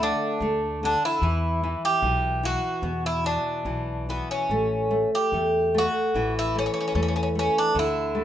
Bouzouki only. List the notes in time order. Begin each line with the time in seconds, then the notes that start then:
0.03 D4
0.85 D4
1.05 E4
1.85 G4
2.45 F#4
3.06 E4
3.26 D4
4.10 B3
4.31 C#4
5.15 G4
5.78 F#4
6.39 E4
6.59 C#4
6.66 C#4
6.74 C#4
6.80 C#4
6.88 C#4
6.95 C#4
7.03 C#4
7.08 C#4
7.16 C#4
7.23 C#4
7.39 C#4
7.58 D4
7.79 E4